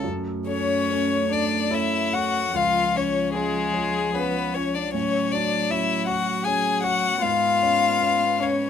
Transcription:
0.03 0.45 F#2 medium
0.03 2.50 A3 medium
0.46 1.27 C#4 medium
0.46 0.85 A4 soft
0.46 0.85 C#5 medium
0.46 1.34 C#5 medium
0.90 1.27 C#4 soft
0.90 1.27 A4 soft
0.90 1.27 C#5 medium
1.31 1.72 D4 medium
1.31 1.68 A4 soft
1.31 1.68 C#5 medium
1.31 1.75 D5 medium
1.70 2.08 C#4 soft
1.70 2.16 E4 medium
1.70 2.08 A4 soft
1.70 2.09 C#5 medium
1.70 2.15 E5 medium
2.13 2.55 F#4 medium
2.13 2.50 A4 soft
2.13 2.51 C#5 soft
2.13 2.57 F#5 medium
2.53 2.94 C#2 medium
2.53 4.90 F3 medium
2.53 2.98 F4 medium
2.53 2.98 F5 medium
2.95 3.38 C#4 medium
2.95 3.31 F4 soft
2.95 3.31 C#5 soft
2.95 3.33 C#5 medium
3.34 4.15 G#3 medium
3.34 3.70 C#4 soft
3.34 3.71 F4 soft
3.34 4.16 G#4 medium
3.34 3.71 C#5 soft
3.73 4.10 F4 soft
3.73 4.10 C#5 soft
4.13 4.58 B3 medium
4.13 4.50 C#4 soft
4.13 4.50 F4 soft
4.13 4.56 B4 medium
4.13 4.50 C#5 soft
4.53 4.77 C#4 medium
4.53 4.89 F4 soft
4.53 4.76 C#5 medium
4.74 4.94 D4 medium
4.74 4.93 D5 medium
4.94 5.31 A2 medium
4.94 7.17 F#3 medium
4.94 5.36 C#4 medium
4.94 5.33 C#5 medium
5.32 5.72 D4 medium
5.32 5.67 F#4 soft
5.32 5.67 C#5 medium
5.32 5.72 D5 medium
5.71 6.04 C#4 soft
5.71 6.09 E4 medium
5.71 6.05 F#4 soft
5.71 6.05 C#5 soft
5.71 6.07 E5 medium
6.07 6.46 F#4 medium
6.07 6.41 F#4 soft
6.07 6.42 C#5 soft
6.07 6.46 F#5 medium
6.45 6.80 C#4 soft
6.45 6.80 F#4 soft
6.45 6.85 G#4 medium
6.45 6.80 C#5 soft
6.45 6.82 G#5 medium
6.83 7.18 F#4 soft
6.83 7.21 F#4 medium
6.83 7.18 C#5 soft
6.83 7.23 F#5 medium
7.21 7.60 G#2 medium
7.21 8.70 B3 medium
7.21 8.41 F4 medium
7.21 8.43 F5 medium
7.62 7.97 C#4 soft
7.62 7.97 C#5 soft
8.01 8.36 B3 soft
8.01 8.37 C#4 soft
8.01 8.37 C#5 soft
8.40 8.70 C#4 medium
8.40 8.70 C#4 soft
8.40 8.70 C#5 soft
8.40 8.70 C#5 medium

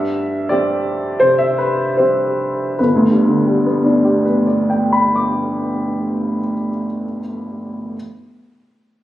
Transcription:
0.00 0.48 G2 soft
0.00 0.49 E5 medium
0.49 1.17 G3 soft
0.49 1.18 C4 soft
0.49 1.18 G4 soft
0.49 1.21 D5 soft
1.20 1.95 C3 soft
1.20 1.39 C5 soft
1.38 1.58 E5 soft
1.58 1.97 B4 soft
1.97 2.75 G3 soft
1.97 2.75 C4 soft
1.97 2.75 G4 soft
1.97 2.78 C5 soft
2.79 6.38 G1 soft
2.79 4.24 B4 soft
2.96 6.54 D2 soft
3.11 6.69 G2 soft
3.28 6.86 D3 soft
3.47 7.05 G3 soft
3.66 7.20 B3 soft
3.84 7.19 D4 soft
4.05 7.20 G4 soft
4.25 7.19 B4 soft
4.47 7.20 D5 soft
4.70 7.20 G5 soft
4.92 7.20 B5 soft
5.16 7.20 D6 soft

